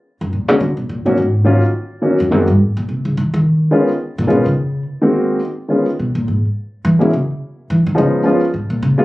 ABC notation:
X:1
M:4/4
L:1/8
Q:"Swing" 1/4=212
K:Dbmix
V:1 name="Grand piano"
z3 [=D,A,B,^C^F] z3 [E,^F,B,CF] | z2 [E,G,B,DF] z3 [E,G,B,DG] z | [E,A,B,=CG] z6 z | z2 [E,A,CDF] z3 [E,A,CDF] z |
z3 [E,A,B,=CG]3 z2 | [E,A,CDF] z6 z | z [G,A,B,D_F] z6 | [F,A,CDE]2 [F,A,CDF] z4 [G,A,B,CF] |]
V:2 name="Upright bass" clef=bass
z ^F,, B,, ^C, =D, _C, B,, =A,, | A,,3 z4 F,, | G,, =G,, A,, B,, =C, D, E, E,- | E,2 z3 B,, C, D,- |
D,2 z6 | z2 C, B,, A,, z3 | _F, E, D, z3 F, E, | D, z3 A,, B,, D, z |]